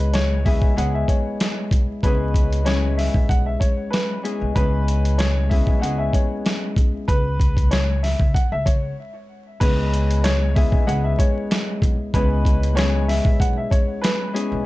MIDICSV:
0, 0, Header, 1, 5, 480
1, 0, Start_track
1, 0, Key_signature, 4, "minor"
1, 0, Tempo, 631579
1, 1544, Time_signature, 4, 2, 24, 8
1, 11141, End_track
2, 0, Start_track
2, 0, Title_t, "Upright piano"
2, 0, Program_c, 0, 0
2, 103, Note_on_c, 0, 73, 98
2, 320, Note_off_c, 0, 73, 0
2, 346, Note_on_c, 0, 76, 82
2, 561, Note_off_c, 0, 76, 0
2, 589, Note_on_c, 0, 78, 85
2, 704, Note_off_c, 0, 78, 0
2, 716, Note_on_c, 0, 76, 74
2, 815, Note_off_c, 0, 76, 0
2, 824, Note_on_c, 0, 73, 68
2, 1040, Note_off_c, 0, 73, 0
2, 1544, Note_on_c, 0, 71, 100
2, 1996, Note_off_c, 0, 71, 0
2, 2018, Note_on_c, 0, 73, 94
2, 2237, Note_off_c, 0, 73, 0
2, 2260, Note_on_c, 0, 76, 81
2, 2478, Note_off_c, 0, 76, 0
2, 2501, Note_on_c, 0, 78, 85
2, 2619, Note_off_c, 0, 78, 0
2, 2630, Note_on_c, 0, 76, 75
2, 2731, Note_off_c, 0, 76, 0
2, 2735, Note_on_c, 0, 73, 75
2, 2955, Note_off_c, 0, 73, 0
2, 2968, Note_on_c, 0, 71, 89
2, 3191, Note_off_c, 0, 71, 0
2, 3461, Note_on_c, 0, 71, 108
2, 3914, Note_off_c, 0, 71, 0
2, 3939, Note_on_c, 0, 73, 101
2, 4157, Note_off_c, 0, 73, 0
2, 4177, Note_on_c, 0, 76, 82
2, 4396, Note_off_c, 0, 76, 0
2, 4421, Note_on_c, 0, 78, 81
2, 4539, Note_off_c, 0, 78, 0
2, 4548, Note_on_c, 0, 76, 79
2, 4650, Note_off_c, 0, 76, 0
2, 4664, Note_on_c, 0, 73, 67
2, 4880, Note_off_c, 0, 73, 0
2, 5379, Note_on_c, 0, 71, 100
2, 5833, Note_off_c, 0, 71, 0
2, 5858, Note_on_c, 0, 73, 97
2, 6077, Note_off_c, 0, 73, 0
2, 6101, Note_on_c, 0, 76, 79
2, 6319, Note_off_c, 0, 76, 0
2, 6340, Note_on_c, 0, 78, 81
2, 6459, Note_off_c, 0, 78, 0
2, 6476, Note_on_c, 0, 76, 89
2, 6574, Note_off_c, 0, 76, 0
2, 6578, Note_on_c, 0, 73, 69
2, 6797, Note_off_c, 0, 73, 0
2, 7297, Note_on_c, 0, 71, 101
2, 7752, Note_off_c, 0, 71, 0
2, 7781, Note_on_c, 0, 73, 105
2, 7999, Note_off_c, 0, 73, 0
2, 8022, Note_on_c, 0, 76, 83
2, 8239, Note_off_c, 0, 76, 0
2, 8262, Note_on_c, 0, 78, 91
2, 8380, Note_off_c, 0, 78, 0
2, 8392, Note_on_c, 0, 76, 80
2, 8492, Note_off_c, 0, 76, 0
2, 8500, Note_on_c, 0, 73, 75
2, 8718, Note_off_c, 0, 73, 0
2, 9225, Note_on_c, 0, 71, 101
2, 9676, Note_off_c, 0, 71, 0
2, 9697, Note_on_c, 0, 73, 98
2, 9916, Note_off_c, 0, 73, 0
2, 9943, Note_on_c, 0, 76, 87
2, 10160, Note_off_c, 0, 76, 0
2, 10184, Note_on_c, 0, 78, 84
2, 10301, Note_off_c, 0, 78, 0
2, 10316, Note_on_c, 0, 76, 78
2, 10414, Note_off_c, 0, 76, 0
2, 10419, Note_on_c, 0, 73, 79
2, 10637, Note_off_c, 0, 73, 0
2, 10651, Note_on_c, 0, 71, 93
2, 10873, Note_off_c, 0, 71, 0
2, 11141, End_track
3, 0, Start_track
3, 0, Title_t, "Harp"
3, 0, Program_c, 1, 46
3, 0, Note_on_c, 1, 56, 88
3, 0, Note_on_c, 1, 59, 83
3, 0, Note_on_c, 1, 61, 82
3, 0, Note_on_c, 1, 64, 86
3, 0, Note_on_c, 1, 68, 99
3, 334, Note_off_c, 1, 56, 0
3, 340, Note_on_c, 1, 56, 86
3, 342, Note_off_c, 1, 61, 0
3, 345, Note_off_c, 1, 59, 0
3, 345, Note_on_c, 1, 61, 81
3, 347, Note_off_c, 1, 68, 0
3, 348, Note_off_c, 1, 64, 0
3, 348, Note_on_c, 1, 59, 79
3, 350, Note_on_c, 1, 68, 103
3, 351, Note_on_c, 1, 64, 87
3, 567, Note_off_c, 1, 59, 0
3, 568, Note_off_c, 1, 61, 0
3, 569, Note_off_c, 1, 64, 0
3, 570, Note_off_c, 1, 68, 0
3, 571, Note_off_c, 1, 56, 0
3, 578, Note_on_c, 1, 56, 90
3, 581, Note_on_c, 1, 61, 79
3, 585, Note_on_c, 1, 59, 82
3, 586, Note_on_c, 1, 64, 83
3, 586, Note_on_c, 1, 68, 98
3, 1540, Note_off_c, 1, 56, 0
3, 1548, Note_on_c, 1, 56, 92
3, 1549, Note_off_c, 1, 61, 0
3, 1551, Note_off_c, 1, 59, 0
3, 1552, Note_on_c, 1, 61, 82
3, 1554, Note_off_c, 1, 64, 0
3, 1554, Note_on_c, 1, 59, 84
3, 1555, Note_off_c, 1, 68, 0
3, 1557, Note_on_c, 1, 64, 78
3, 1558, Note_on_c, 1, 68, 96
3, 1993, Note_off_c, 1, 59, 0
3, 1994, Note_off_c, 1, 61, 0
3, 1994, Note_off_c, 1, 64, 0
3, 1996, Note_off_c, 1, 68, 0
3, 2004, Note_off_c, 1, 56, 0
3, 2011, Note_on_c, 1, 56, 92
3, 2016, Note_on_c, 1, 61, 87
3, 2018, Note_on_c, 1, 59, 80
3, 2020, Note_on_c, 1, 64, 87
3, 2022, Note_on_c, 1, 68, 102
3, 3207, Note_off_c, 1, 56, 0
3, 3215, Note_off_c, 1, 61, 0
3, 3215, Note_on_c, 1, 56, 75
3, 3217, Note_off_c, 1, 59, 0
3, 3218, Note_on_c, 1, 61, 70
3, 3220, Note_on_c, 1, 59, 70
3, 3221, Note_off_c, 1, 64, 0
3, 3222, Note_off_c, 1, 68, 0
3, 3224, Note_on_c, 1, 64, 74
3, 3225, Note_on_c, 1, 68, 94
3, 3444, Note_off_c, 1, 59, 0
3, 3444, Note_off_c, 1, 61, 0
3, 3446, Note_off_c, 1, 64, 0
3, 3447, Note_off_c, 1, 68, 0
3, 3453, Note_off_c, 1, 56, 0
3, 3460, Note_on_c, 1, 56, 91
3, 3464, Note_on_c, 1, 61, 85
3, 3467, Note_on_c, 1, 59, 85
3, 3469, Note_on_c, 1, 68, 96
3, 3470, Note_on_c, 1, 64, 87
3, 4169, Note_off_c, 1, 56, 0
3, 4172, Note_on_c, 1, 56, 88
3, 4182, Note_off_c, 1, 59, 0
3, 4184, Note_off_c, 1, 64, 0
3, 4185, Note_on_c, 1, 59, 80
3, 4187, Note_on_c, 1, 64, 87
3, 4189, Note_off_c, 1, 68, 0
3, 4192, Note_on_c, 1, 68, 100
3, 4193, Note_off_c, 1, 61, 0
3, 4196, Note_on_c, 1, 61, 78
3, 4397, Note_off_c, 1, 61, 0
3, 4400, Note_on_c, 1, 61, 81
3, 4407, Note_off_c, 1, 59, 0
3, 4408, Note_off_c, 1, 56, 0
3, 4409, Note_off_c, 1, 64, 0
3, 4410, Note_off_c, 1, 68, 0
3, 4415, Note_on_c, 1, 56, 88
3, 4420, Note_on_c, 1, 59, 84
3, 4423, Note_on_c, 1, 64, 82
3, 4446, Note_on_c, 1, 68, 98
3, 6174, Note_off_c, 1, 68, 0
3, 6408, Note_off_c, 1, 64, 0
3, 6602, Note_off_c, 1, 61, 0
3, 6781, Note_off_c, 1, 59, 0
3, 7292, Note_off_c, 1, 56, 0
3, 7299, Note_on_c, 1, 56, 91
3, 7303, Note_on_c, 1, 61, 84
3, 7306, Note_on_c, 1, 59, 85
3, 7309, Note_on_c, 1, 64, 87
3, 7310, Note_on_c, 1, 68, 101
3, 8013, Note_off_c, 1, 56, 0
3, 8019, Note_on_c, 1, 56, 89
3, 8021, Note_off_c, 1, 61, 0
3, 8023, Note_off_c, 1, 59, 0
3, 8024, Note_on_c, 1, 61, 81
3, 8026, Note_off_c, 1, 64, 0
3, 8026, Note_off_c, 1, 68, 0
3, 8026, Note_on_c, 1, 59, 86
3, 8029, Note_on_c, 1, 64, 93
3, 8029, Note_on_c, 1, 68, 107
3, 8246, Note_off_c, 1, 59, 0
3, 8247, Note_off_c, 1, 61, 0
3, 8248, Note_off_c, 1, 64, 0
3, 8249, Note_off_c, 1, 56, 0
3, 8249, Note_off_c, 1, 68, 0
3, 8257, Note_on_c, 1, 56, 90
3, 8259, Note_on_c, 1, 61, 83
3, 8261, Note_on_c, 1, 59, 86
3, 8265, Note_on_c, 1, 64, 85
3, 8266, Note_on_c, 1, 68, 101
3, 9221, Note_off_c, 1, 56, 0
3, 9227, Note_on_c, 1, 56, 95
3, 9228, Note_off_c, 1, 61, 0
3, 9231, Note_on_c, 1, 61, 85
3, 9232, Note_off_c, 1, 59, 0
3, 9234, Note_off_c, 1, 64, 0
3, 9234, Note_off_c, 1, 68, 0
3, 9235, Note_on_c, 1, 59, 90
3, 9237, Note_on_c, 1, 64, 83
3, 9237, Note_on_c, 1, 68, 97
3, 9673, Note_off_c, 1, 59, 0
3, 9673, Note_off_c, 1, 61, 0
3, 9674, Note_off_c, 1, 64, 0
3, 9675, Note_off_c, 1, 68, 0
3, 9685, Note_off_c, 1, 56, 0
3, 9688, Note_on_c, 1, 61, 92
3, 9691, Note_on_c, 1, 56, 95
3, 9698, Note_on_c, 1, 59, 82
3, 9699, Note_on_c, 1, 64, 87
3, 9711, Note_on_c, 1, 68, 106
3, 10886, Note_off_c, 1, 56, 0
3, 10894, Note_off_c, 1, 61, 0
3, 10894, Note_on_c, 1, 56, 77
3, 10895, Note_off_c, 1, 59, 0
3, 10897, Note_on_c, 1, 61, 73
3, 10898, Note_on_c, 1, 59, 70
3, 10899, Note_off_c, 1, 68, 0
3, 10900, Note_off_c, 1, 64, 0
3, 10902, Note_on_c, 1, 68, 93
3, 10903, Note_on_c, 1, 64, 78
3, 11123, Note_off_c, 1, 59, 0
3, 11124, Note_off_c, 1, 61, 0
3, 11125, Note_off_c, 1, 64, 0
3, 11125, Note_off_c, 1, 68, 0
3, 11134, Note_off_c, 1, 56, 0
3, 11141, End_track
4, 0, Start_track
4, 0, Title_t, "Upright bass"
4, 0, Program_c, 2, 32
4, 0, Note_on_c, 2, 37, 107
4, 443, Note_off_c, 2, 37, 0
4, 469, Note_on_c, 2, 35, 90
4, 557, Note_off_c, 2, 35, 0
4, 584, Note_on_c, 2, 37, 101
4, 772, Note_off_c, 2, 37, 0
4, 1302, Note_on_c, 2, 35, 93
4, 1404, Note_off_c, 2, 35, 0
4, 1545, Note_on_c, 2, 37, 99
4, 2364, Note_off_c, 2, 37, 0
4, 2388, Note_on_c, 2, 35, 91
4, 2477, Note_off_c, 2, 35, 0
4, 2501, Note_on_c, 2, 35, 98
4, 2690, Note_off_c, 2, 35, 0
4, 3354, Note_on_c, 2, 35, 82
4, 3440, Note_off_c, 2, 35, 0
4, 3465, Note_on_c, 2, 37, 105
4, 4284, Note_off_c, 2, 37, 0
4, 4310, Note_on_c, 2, 35, 88
4, 4398, Note_off_c, 2, 35, 0
4, 4423, Note_on_c, 2, 37, 88
4, 4611, Note_off_c, 2, 37, 0
4, 5141, Note_on_c, 2, 35, 85
4, 5244, Note_off_c, 2, 35, 0
4, 5384, Note_on_c, 2, 37, 107
4, 6203, Note_off_c, 2, 37, 0
4, 6229, Note_on_c, 2, 37, 91
4, 6317, Note_off_c, 2, 37, 0
4, 6475, Note_on_c, 2, 37, 87
4, 6560, Note_off_c, 2, 37, 0
4, 6583, Note_on_c, 2, 49, 93
4, 6771, Note_off_c, 2, 49, 0
4, 7305, Note_on_c, 2, 37, 109
4, 8124, Note_off_c, 2, 37, 0
4, 8149, Note_on_c, 2, 35, 94
4, 8237, Note_off_c, 2, 35, 0
4, 8265, Note_on_c, 2, 37, 105
4, 8452, Note_off_c, 2, 37, 0
4, 8984, Note_on_c, 2, 35, 98
4, 9085, Note_off_c, 2, 35, 0
4, 9225, Note_on_c, 2, 37, 105
4, 10044, Note_off_c, 2, 37, 0
4, 10069, Note_on_c, 2, 35, 98
4, 10157, Note_off_c, 2, 35, 0
4, 10182, Note_on_c, 2, 35, 97
4, 10371, Note_off_c, 2, 35, 0
4, 11033, Note_on_c, 2, 35, 87
4, 11120, Note_off_c, 2, 35, 0
4, 11141, End_track
5, 0, Start_track
5, 0, Title_t, "Drums"
5, 0, Note_on_c, 9, 42, 55
5, 75, Note_off_c, 9, 42, 0
5, 103, Note_on_c, 9, 42, 82
5, 114, Note_on_c, 9, 38, 124
5, 179, Note_off_c, 9, 42, 0
5, 190, Note_off_c, 9, 38, 0
5, 348, Note_on_c, 9, 36, 99
5, 350, Note_on_c, 9, 46, 49
5, 424, Note_off_c, 9, 36, 0
5, 426, Note_off_c, 9, 46, 0
5, 469, Note_on_c, 9, 36, 90
5, 545, Note_off_c, 9, 36, 0
5, 594, Note_on_c, 9, 42, 83
5, 670, Note_off_c, 9, 42, 0
5, 822, Note_on_c, 9, 36, 82
5, 828, Note_on_c, 9, 42, 84
5, 898, Note_off_c, 9, 36, 0
5, 904, Note_off_c, 9, 42, 0
5, 1067, Note_on_c, 9, 42, 90
5, 1071, Note_on_c, 9, 38, 108
5, 1143, Note_off_c, 9, 42, 0
5, 1147, Note_off_c, 9, 38, 0
5, 1301, Note_on_c, 9, 36, 100
5, 1311, Note_on_c, 9, 42, 72
5, 1377, Note_off_c, 9, 36, 0
5, 1387, Note_off_c, 9, 42, 0
5, 1544, Note_on_c, 9, 36, 116
5, 1549, Note_on_c, 9, 42, 100
5, 1620, Note_off_c, 9, 36, 0
5, 1625, Note_off_c, 9, 42, 0
5, 1781, Note_on_c, 9, 36, 83
5, 1791, Note_on_c, 9, 42, 86
5, 1857, Note_off_c, 9, 36, 0
5, 1867, Note_off_c, 9, 42, 0
5, 1919, Note_on_c, 9, 42, 52
5, 1995, Note_off_c, 9, 42, 0
5, 2022, Note_on_c, 9, 42, 81
5, 2033, Note_on_c, 9, 38, 124
5, 2098, Note_off_c, 9, 42, 0
5, 2109, Note_off_c, 9, 38, 0
5, 2270, Note_on_c, 9, 46, 48
5, 2274, Note_on_c, 9, 38, 37
5, 2346, Note_off_c, 9, 46, 0
5, 2350, Note_off_c, 9, 38, 0
5, 2389, Note_on_c, 9, 36, 92
5, 2465, Note_off_c, 9, 36, 0
5, 2502, Note_on_c, 9, 36, 93
5, 2515, Note_on_c, 9, 42, 86
5, 2578, Note_off_c, 9, 36, 0
5, 2591, Note_off_c, 9, 42, 0
5, 2742, Note_on_c, 9, 36, 80
5, 2750, Note_on_c, 9, 42, 86
5, 2818, Note_off_c, 9, 36, 0
5, 2826, Note_off_c, 9, 42, 0
5, 2989, Note_on_c, 9, 42, 89
5, 2993, Note_on_c, 9, 38, 110
5, 3065, Note_off_c, 9, 42, 0
5, 3069, Note_off_c, 9, 38, 0
5, 3232, Note_on_c, 9, 42, 74
5, 3308, Note_off_c, 9, 42, 0
5, 3464, Note_on_c, 9, 36, 115
5, 3469, Note_on_c, 9, 42, 99
5, 3540, Note_off_c, 9, 36, 0
5, 3545, Note_off_c, 9, 42, 0
5, 3711, Note_on_c, 9, 42, 87
5, 3787, Note_off_c, 9, 42, 0
5, 3839, Note_on_c, 9, 42, 56
5, 3915, Note_off_c, 9, 42, 0
5, 3943, Note_on_c, 9, 42, 83
5, 3954, Note_on_c, 9, 38, 118
5, 4019, Note_off_c, 9, 42, 0
5, 4030, Note_off_c, 9, 38, 0
5, 4188, Note_on_c, 9, 36, 98
5, 4190, Note_on_c, 9, 46, 50
5, 4264, Note_off_c, 9, 36, 0
5, 4266, Note_off_c, 9, 46, 0
5, 4309, Note_on_c, 9, 36, 93
5, 4385, Note_off_c, 9, 36, 0
5, 4434, Note_on_c, 9, 42, 84
5, 4510, Note_off_c, 9, 42, 0
5, 4662, Note_on_c, 9, 36, 81
5, 4669, Note_on_c, 9, 42, 85
5, 4738, Note_off_c, 9, 36, 0
5, 4745, Note_off_c, 9, 42, 0
5, 4907, Note_on_c, 9, 42, 93
5, 4911, Note_on_c, 9, 38, 113
5, 4983, Note_off_c, 9, 42, 0
5, 4987, Note_off_c, 9, 38, 0
5, 5141, Note_on_c, 9, 36, 102
5, 5151, Note_on_c, 9, 42, 73
5, 5217, Note_off_c, 9, 36, 0
5, 5227, Note_off_c, 9, 42, 0
5, 5384, Note_on_c, 9, 36, 114
5, 5389, Note_on_c, 9, 42, 102
5, 5460, Note_off_c, 9, 36, 0
5, 5465, Note_off_c, 9, 42, 0
5, 5621, Note_on_c, 9, 36, 85
5, 5631, Note_on_c, 9, 42, 83
5, 5697, Note_off_c, 9, 36, 0
5, 5707, Note_off_c, 9, 42, 0
5, 5751, Note_on_c, 9, 36, 94
5, 5759, Note_on_c, 9, 42, 52
5, 5827, Note_off_c, 9, 36, 0
5, 5835, Note_off_c, 9, 42, 0
5, 5863, Note_on_c, 9, 42, 81
5, 5874, Note_on_c, 9, 38, 120
5, 5939, Note_off_c, 9, 42, 0
5, 5950, Note_off_c, 9, 38, 0
5, 6109, Note_on_c, 9, 46, 51
5, 6113, Note_on_c, 9, 38, 38
5, 6185, Note_off_c, 9, 46, 0
5, 6189, Note_off_c, 9, 38, 0
5, 6229, Note_on_c, 9, 36, 88
5, 6305, Note_off_c, 9, 36, 0
5, 6342, Note_on_c, 9, 36, 90
5, 6355, Note_on_c, 9, 42, 82
5, 6418, Note_off_c, 9, 36, 0
5, 6431, Note_off_c, 9, 42, 0
5, 6582, Note_on_c, 9, 36, 81
5, 6588, Note_on_c, 9, 42, 84
5, 6658, Note_off_c, 9, 36, 0
5, 6664, Note_off_c, 9, 42, 0
5, 7305, Note_on_c, 9, 36, 118
5, 7305, Note_on_c, 9, 49, 102
5, 7310, Note_on_c, 9, 42, 104
5, 7381, Note_off_c, 9, 36, 0
5, 7381, Note_off_c, 9, 49, 0
5, 7386, Note_off_c, 9, 42, 0
5, 7551, Note_on_c, 9, 42, 84
5, 7627, Note_off_c, 9, 42, 0
5, 7680, Note_on_c, 9, 42, 57
5, 7756, Note_off_c, 9, 42, 0
5, 7783, Note_on_c, 9, 42, 85
5, 7785, Note_on_c, 9, 26, 83
5, 7794, Note_on_c, 9, 38, 123
5, 7859, Note_off_c, 9, 42, 0
5, 7861, Note_off_c, 9, 26, 0
5, 7870, Note_off_c, 9, 38, 0
5, 8028, Note_on_c, 9, 36, 102
5, 8030, Note_on_c, 9, 46, 50
5, 8104, Note_off_c, 9, 36, 0
5, 8106, Note_off_c, 9, 46, 0
5, 8149, Note_on_c, 9, 36, 97
5, 8225, Note_off_c, 9, 36, 0
5, 8275, Note_on_c, 9, 42, 89
5, 8351, Note_off_c, 9, 42, 0
5, 8503, Note_on_c, 9, 36, 83
5, 8510, Note_on_c, 9, 42, 88
5, 8579, Note_off_c, 9, 36, 0
5, 8586, Note_off_c, 9, 42, 0
5, 8748, Note_on_c, 9, 26, 67
5, 8749, Note_on_c, 9, 42, 95
5, 8753, Note_on_c, 9, 38, 119
5, 8824, Note_off_c, 9, 26, 0
5, 8825, Note_off_c, 9, 42, 0
5, 8829, Note_off_c, 9, 38, 0
5, 8983, Note_on_c, 9, 36, 108
5, 8994, Note_on_c, 9, 42, 73
5, 9059, Note_off_c, 9, 36, 0
5, 9070, Note_off_c, 9, 42, 0
5, 9225, Note_on_c, 9, 36, 116
5, 9231, Note_on_c, 9, 42, 103
5, 9301, Note_off_c, 9, 36, 0
5, 9307, Note_off_c, 9, 42, 0
5, 9462, Note_on_c, 9, 36, 90
5, 9472, Note_on_c, 9, 42, 88
5, 9538, Note_off_c, 9, 36, 0
5, 9548, Note_off_c, 9, 42, 0
5, 9602, Note_on_c, 9, 42, 55
5, 9678, Note_off_c, 9, 42, 0
5, 9705, Note_on_c, 9, 26, 87
5, 9706, Note_on_c, 9, 42, 85
5, 9717, Note_on_c, 9, 38, 127
5, 9781, Note_off_c, 9, 26, 0
5, 9782, Note_off_c, 9, 42, 0
5, 9793, Note_off_c, 9, 38, 0
5, 9951, Note_on_c, 9, 46, 52
5, 9954, Note_on_c, 9, 38, 38
5, 10027, Note_off_c, 9, 46, 0
5, 10030, Note_off_c, 9, 38, 0
5, 10069, Note_on_c, 9, 36, 95
5, 10145, Note_off_c, 9, 36, 0
5, 10182, Note_on_c, 9, 36, 96
5, 10196, Note_on_c, 9, 42, 91
5, 10258, Note_off_c, 9, 36, 0
5, 10272, Note_off_c, 9, 42, 0
5, 10423, Note_on_c, 9, 36, 84
5, 10430, Note_on_c, 9, 42, 88
5, 10499, Note_off_c, 9, 36, 0
5, 10506, Note_off_c, 9, 42, 0
5, 10667, Note_on_c, 9, 26, 67
5, 10670, Note_on_c, 9, 42, 95
5, 10674, Note_on_c, 9, 38, 116
5, 10743, Note_off_c, 9, 26, 0
5, 10746, Note_off_c, 9, 42, 0
5, 10750, Note_off_c, 9, 38, 0
5, 10915, Note_on_c, 9, 42, 73
5, 10991, Note_off_c, 9, 42, 0
5, 11141, End_track
0, 0, End_of_file